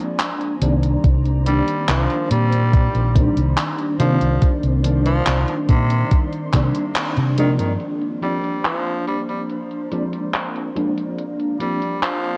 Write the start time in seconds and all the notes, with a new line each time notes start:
Already playing: F3 G#3 A#3 C4 D4 C5 G#5 A#5
0.20 clap, closed hi-hat
0.41 closed hi-hat
0.61 C2 D#3 G3 A#3 C4 D4 C5 D5 A#5, closed hi-hat
0.83 closed hi-hat
1.04 C2, kick, closed hi-hat
1.26 closed hi-hat
1.45 D#3 G3 A#3 C4 D4, closed hi-hat
1.68 closed hi-hat
1.89 C2 F3, clap, closed hi-hat
2.10 closed hi-hat
2.31 A#2 G3, closed hi-hat
2.52 closed hi-hat
2.73 kick, closed hi-hat
2.95 A#1, closed hi-hat
3.15 D#3 G3 A#3 C4 D4, kick, closed hi-hat
3.37 C2, closed hi-hat
3.58 clap, closed hi-hat
3.79 closed hi-hat
3.99 C3 D#3 F3 G3 A#3 C4 D4 C6, closed hi-hat
4.21 C2, closed hi-hat
4.42 kick, closed hi-hat
4.63 C2, closed hi-hat
4.83 D#3 G3 A#3 C4 D4, closed hi-hat
5.06 F3, closed hi-hat
5.27 C2, clap, closed hi-hat
5.48 closed hi-hat
5.69 A#2 C3, kick, closed hi-hat
5.90 closed hi-hat
6.11 kick, closed hi-hat
6.32 closed hi-hat
6.53 C3 D#3 G3 A#3 C4 D4, kick, clap, closed hi-hat
6.75 closed hi-hat
6.96 clap, closed hi-hat
7.17 C3, closed hi-hat
7.38 D#3 F3 G#3 A#3 C4 D4, closed hi-hat
7.59 G2 D#3, closed hi-hat
7.80 A#3 D4 A#4 C5, closed hi-hat
8.02 closed hi-hat
8.21 F3 G3 A#3 C4 D4, closed hi-hat
8.44 closed hi-hat
8.65 F3, clap, closed hi-hat
8.86 closed hi-hat
9.07 G3, closed hi-hat
9.29 G3, closed hi-hat
9.49 closed hi-hat
9.71 closed hi-hat
9.91 F3 G#3 A#3 C4 D4, closed hi-hat
10.13 closed hi-hat
10.34 clap, closed hi-hat
10.55 closed hi-hat
10.75 F3 G#3 A#3 C4 D4, closed hi-hat
10.98 closed hi-hat
11.19 D5, closed hi-hat
11.40 closed hi-hat
11.59 F3 G3 A#3 C4 D4, closed hi-hat
11.82 closed hi-hat
12.03 F3, clap, closed hi-hat
12.24 closed hi-hat